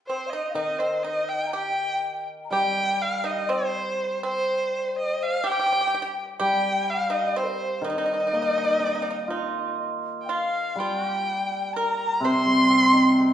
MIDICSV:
0, 0, Header, 1, 5, 480
1, 0, Start_track
1, 0, Tempo, 975610
1, 280, Time_signature, 2, 2, 24, 8
1, 2206, Tempo, 960000
1, 4606, Tempo, 986842
1, 5566, Tempo, 956938
1, 6607, End_track
2, 0, Start_track
2, 0, Title_t, "Erhu"
2, 0, Program_c, 0, 110
2, 35, Note_on_c, 0, 72, 79
2, 150, Note_on_c, 0, 75, 78
2, 157, Note_off_c, 0, 72, 0
2, 269, Note_off_c, 0, 75, 0
2, 272, Note_on_c, 0, 75, 89
2, 389, Note_on_c, 0, 72, 77
2, 397, Note_off_c, 0, 75, 0
2, 508, Note_on_c, 0, 75, 85
2, 515, Note_off_c, 0, 72, 0
2, 635, Note_on_c, 0, 79, 88
2, 642, Note_off_c, 0, 75, 0
2, 752, Note_off_c, 0, 79, 0
2, 755, Note_on_c, 0, 79, 93
2, 1099, Note_off_c, 0, 79, 0
2, 1239, Note_on_c, 0, 79, 105
2, 1486, Note_on_c, 0, 77, 90
2, 1493, Note_off_c, 0, 79, 0
2, 1609, Note_on_c, 0, 75, 81
2, 1616, Note_off_c, 0, 77, 0
2, 1723, Note_on_c, 0, 72, 95
2, 1730, Note_off_c, 0, 75, 0
2, 2081, Note_off_c, 0, 72, 0
2, 2084, Note_on_c, 0, 72, 95
2, 2429, Note_off_c, 0, 72, 0
2, 2461, Note_on_c, 0, 75, 89
2, 2579, Note_on_c, 0, 77, 96
2, 2587, Note_off_c, 0, 75, 0
2, 2700, Note_on_c, 0, 79, 110
2, 2708, Note_off_c, 0, 77, 0
2, 3055, Note_off_c, 0, 79, 0
2, 3174, Note_on_c, 0, 79, 102
2, 3414, Note_on_c, 0, 77, 90
2, 3421, Note_off_c, 0, 79, 0
2, 3526, Note_on_c, 0, 75, 85
2, 3533, Note_off_c, 0, 77, 0
2, 3649, Note_on_c, 0, 72, 87
2, 3656, Note_off_c, 0, 75, 0
2, 3890, Note_on_c, 0, 75, 94
2, 3897, Note_off_c, 0, 72, 0
2, 4849, Note_off_c, 0, 75, 0
2, 5058, Note_on_c, 0, 79, 52
2, 5099, Note_on_c, 0, 77, 79
2, 5106, Note_off_c, 0, 79, 0
2, 5339, Note_on_c, 0, 79, 92
2, 5347, Note_off_c, 0, 77, 0
2, 5816, Note_off_c, 0, 79, 0
2, 5819, Note_on_c, 0, 82, 98
2, 6061, Note_on_c, 0, 84, 116
2, 6069, Note_off_c, 0, 82, 0
2, 6607, Note_off_c, 0, 84, 0
2, 6607, End_track
3, 0, Start_track
3, 0, Title_t, "Xiao"
3, 0, Program_c, 1, 77
3, 42, Note_on_c, 1, 72, 63
3, 132, Note_on_c, 1, 77, 46
3, 139, Note_off_c, 1, 72, 0
3, 152, Note_on_c, 1, 75, 69
3, 160, Note_off_c, 1, 77, 0
3, 241, Note_off_c, 1, 75, 0
3, 244, Note_on_c, 1, 77, 55
3, 267, Note_on_c, 1, 75, 65
3, 275, Note_off_c, 1, 77, 0
3, 720, Note_on_c, 1, 82, 54
3, 728, Note_off_c, 1, 75, 0
3, 753, Note_on_c, 1, 79, 68
3, 761, Note_off_c, 1, 82, 0
3, 1118, Note_off_c, 1, 79, 0
3, 1203, Note_on_c, 1, 82, 60
3, 1231, Note_on_c, 1, 79, 82
3, 1238, Note_off_c, 1, 82, 0
3, 1600, Note_on_c, 1, 75, 75
3, 1608, Note_off_c, 1, 79, 0
3, 1628, Note_on_c, 1, 77, 61
3, 1635, Note_off_c, 1, 75, 0
3, 1662, Note_on_c, 1, 75, 75
3, 1669, Note_off_c, 1, 77, 0
3, 1721, Note_on_c, 1, 72, 76
3, 1729, Note_off_c, 1, 75, 0
3, 2074, Note_off_c, 1, 72, 0
3, 2077, Note_on_c, 1, 72, 80
3, 2666, Note_off_c, 1, 72, 0
3, 2687, Note_on_c, 1, 79, 90
3, 3028, Note_off_c, 1, 79, 0
3, 3161, Note_on_c, 1, 79, 85
3, 3404, Note_on_c, 1, 77, 87
3, 3412, Note_off_c, 1, 79, 0
3, 3648, Note_on_c, 1, 72, 67
3, 3656, Note_off_c, 1, 77, 0
3, 3682, Note_on_c, 1, 70, 57
3, 3690, Note_off_c, 1, 72, 0
3, 3705, Note_on_c, 1, 72, 69
3, 3712, Note_off_c, 1, 70, 0
3, 3882, Note_on_c, 1, 75, 77
3, 3890, Note_off_c, 1, 72, 0
3, 4845, Note_off_c, 1, 75, 0
3, 5059, Note_on_c, 1, 79, 44
3, 5082, Note_on_c, 1, 77, 65
3, 5090, Note_off_c, 1, 79, 0
3, 5325, Note_on_c, 1, 79, 79
3, 5332, Note_off_c, 1, 77, 0
3, 5807, Note_on_c, 1, 82, 84
3, 5814, Note_off_c, 1, 79, 0
3, 6041, Note_on_c, 1, 84, 88
3, 6048, Note_off_c, 1, 82, 0
3, 6607, Note_off_c, 1, 84, 0
3, 6607, End_track
4, 0, Start_track
4, 0, Title_t, "Pipa"
4, 0, Program_c, 2, 105
4, 47, Note_on_c, 2, 60, 63
4, 155, Note_off_c, 2, 60, 0
4, 163, Note_on_c, 2, 63, 65
4, 267, Note_off_c, 2, 63, 0
4, 273, Note_on_c, 2, 63, 75
4, 386, Note_off_c, 2, 63, 0
4, 393, Note_on_c, 2, 60, 64
4, 506, Note_off_c, 2, 60, 0
4, 514, Note_on_c, 2, 63, 65
4, 739, Note_off_c, 2, 63, 0
4, 754, Note_on_c, 2, 67, 74
4, 1099, Note_off_c, 2, 67, 0
4, 1242, Note_on_c, 2, 67, 84
4, 1585, Note_off_c, 2, 67, 0
4, 1593, Note_on_c, 2, 63, 70
4, 1710, Note_off_c, 2, 63, 0
4, 1717, Note_on_c, 2, 60, 74
4, 2063, Note_off_c, 2, 60, 0
4, 2083, Note_on_c, 2, 60, 76
4, 2669, Note_off_c, 2, 60, 0
4, 2683, Note_on_c, 2, 67, 82
4, 2716, Note_off_c, 2, 67, 0
4, 2722, Note_on_c, 2, 67, 62
4, 2755, Note_off_c, 2, 67, 0
4, 2761, Note_on_c, 2, 67, 62
4, 2790, Note_off_c, 2, 67, 0
4, 2796, Note_on_c, 2, 67, 53
4, 2821, Note_off_c, 2, 67, 0
4, 2827, Note_on_c, 2, 67, 53
4, 2863, Note_off_c, 2, 67, 0
4, 2869, Note_on_c, 2, 67, 51
4, 2894, Note_off_c, 2, 67, 0
4, 2900, Note_on_c, 2, 67, 60
4, 2931, Note_off_c, 2, 67, 0
4, 2937, Note_on_c, 2, 67, 53
4, 2968, Note_off_c, 2, 67, 0
4, 2974, Note_on_c, 2, 67, 70
4, 3012, Note_off_c, 2, 67, 0
4, 3162, Note_on_c, 2, 67, 90
4, 3505, Note_off_c, 2, 67, 0
4, 3513, Note_on_c, 2, 63, 73
4, 3632, Note_off_c, 2, 63, 0
4, 3646, Note_on_c, 2, 60, 76
4, 3869, Note_off_c, 2, 60, 0
4, 3886, Note_on_c, 2, 63, 76
4, 3907, Note_off_c, 2, 63, 0
4, 3913, Note_on_c, 2, 63, 52
4, 3948, Note_off_c, 2, 63, 0
4, 3954, Note_on_c, 2, 63, 58
4, 3987, Note_off_c, 2, 63, 0
4, 3993, Note_on_c, 2, 63, 50
4, 4026, Note_off_c, 2, 63, 0
4, 4032, Note_on_c, 2, 63, 53
4, 4058, Note_off_c, 2, 63, 0
4, 4064, Note_on_c, 2, 63, 46
4, 4093, Note_off_c, 2, 63, 0
4, 4099, Note_on_c, 2, 63, 51
4, 4132, Note_off_c, 2, 63, 0
4, 4138, Note_on_c, 2, 63, 46
4, 4168, Note_off_c, 2, 63, 0
4, 4174, Note_on_c, 2, 63, 53
4, 4210, Note_off_c, 2, 63, 0
4, 4218, Note_on_c, 2, 63, 45
4, 4247, Note_off_c, 2, 63, 0
4, 4253, Note_on_c, 2, 63, 53
4, 4282, Note_off_c, 2, 63, 0
4, 4288, Note_on_c, 2, 63, 43
4, 4311, Note_off_c, 2, 63, 0
4, 4317, Note_on_c, 2, 63, 52
4, 4355, Note_off_c, 2, 63, 0
4, 4362, Note_on_c, 2, 63, 45
4, 4390, Note_off_c, 2, 63, 0
4, 4396, Note_on_c, 2, 63, 55
4, 4431, Note_off_c, 2, 63, 0
4, 4438, Note_on_c, 2, 63, 46
4, 4469, Note_off_c, 2, 63, 0
4, 4475, Note_on_c, 2, 63, 56
4, 4508, Note_off_c, 2, 63, 0
4, 4517, Note_on_c, 2, 63, 46
4, 4548, Note_off_c, 2, 63, 0
4, 4616, Note_on_c, 2, 63, 58
4, 4835, Note_off_c, 2, 63, 0
4, 5096, Note_on_c, 2, 65, 67
4, 5316, Note_off_c, 2, 65, 0
4, 5343, Note_on_c, 2, 65, 65
4, 5426, Note_off_c, 2, 65, 0
4, 5426, Note_on_c, 2, 66, 65
4, 5479, Note_off_c, 2, 66, 0
4, 5479, Note_on_c, 2, 67, 65
4, 5800, Note_off_c, 2, 67, 0
4, 5820, Note_on_c, 2, 70, 78
4, 6040, Note_off_c, 2, 70, 0
4, 6063, Note_on_c, 2, 72, 84
4, 6607, Note_off_c, 2, 72, 0
4, 6607, End_track
5, 0, Start_track
5, 0, Title_t, "Hammered dulcimer"
5, 0, Program_c, 3, 15
5, 269, Note_on_c, 3, 51, 54
5, 1233, Note_on_c, 3, 55, 57
5, 1719, Note_off_c, 3, 51, 0
5, 2687, Note_off_c, 3, 55, 0
5, 3162, Note_on_c, 3, 55, 64
5, 3872, Note_on_c, 3, 51, 63
5, 4127, Note_on_c, 3, 58, 44
5, 4364, Note_on_c, 3, 63, 51
5, 4603, Note_on_c, 3, 65, 46
5, 4604, Note_off_c, 3, 55, 0
5, 5088, Note_off_c, 3, 58, 0
5, 5321, Note_off_c, 3, 51, 0
5, 5322, Note_on_c, 3, 55, 61
5, 5328, Note_off_c, 3, 63, 0
5, 5566, Note_off_c, 3, 65, 0
5, 6042, Note_on_c, 3, 48, 64
5, 6163, Note_off_c, 3, 55, 0
5, 6169, Note_on_c, 3, 55, 43
5, 6288, Note_on_c, 3, 60, 52
5, 6405, Note_on_c, 3, 63, 44
5, 6533, Note_on_c, 3, 67, 45
5, 6607, Note_off_c, 3, 48, 0
5, 6607, Note_off_c, 3, 55, 0
5, 6607, Note_off_c, 3, 60, 0
5, 6607, Note_off_c, 3, 63, 0
5, 6607, Note_off_c, 3, 67, 0
5, 6607, End_track
0, 0, End_of_file